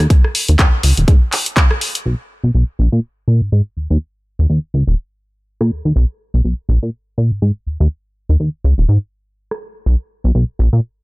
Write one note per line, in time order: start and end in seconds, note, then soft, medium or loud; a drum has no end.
0.10 kick loud
0.10 closed hi-hat medium
0.24 cross-stick medium
0.35 open hi-hat loud
0.49 0.56 D#2 medium
0.49 closed hi-hat medium
0.59 0.69 D#2 medium
0.59 kick loud
0.59 cross-stick medium
0.59 clap loud
0.59 closed hi-hat medium
0.83 0.93 C#2 medium
0.83 open hi-hat loud
0.97 1.05 D#1 loud
0.97 closed hi-hat medium
1.08 1.17 G#2 loud
1.08 kick loud
1.08 closed hi-hat medium
1.32 clap medium
1.32 open hi-hat loud
1.46 closed hi-hat medium
1.57 kick loud
1.57 clap loud
1.57 closed hi-hat medium
1.71 cross-stick medium
1.81 open hi-hat loud
1.95 closed hi-hat medium
2.06 2.15 B1 loud
2.44 2.51 B1 medium
2.54 2.64 B1 medium
2.79 2.88 A#1 medium
2.92 3.00 A#2 medium
3.28 3.41 A#2 medium
3.42 3.50 G#2 soft
3.52 3.62 G#2 medium
3.77 3.88 D#2 soft
3.90 3.98 D#2 medium
4.39 4.46 D#2 medium
4.50 4.59 D#2 medium
4.74 4.83 C#2 medium
4.87 4.95 D#1 medium
5.61 5.71 A#2 medium
5.61 cross-stick medium
5.71 5.82 D#2 soft
5.85 5.93 D#2 medium
5.96 6.05 B1 medium
6.34 6.41 B1 medium
6.45 6.54 B1 medium
6.69 6.78 A#1 medium
6.83 6.90 A#2 medium
7.18 7.31 A#2 medium
7.32 7.40 G#2 soft
7.42 7.52 G#2 medium
7.66 7.78 D#2 soft
7.80 7.88 D#2 loud
8.29 8.37 D#2 medium
8.40 8.49 D#2 medium
8.64 8.74 C#2 medium
8.78 8.85 D#1 medium
8.89 8.98 G#2 loud
9.51 cross-stick medium
9.86 9.96 B1 loud
10.24 10.32 B1 medium
10.35 10.44 B1 medium
10.59 10.69 A#1 medium
10.73 10.80 A#2 medium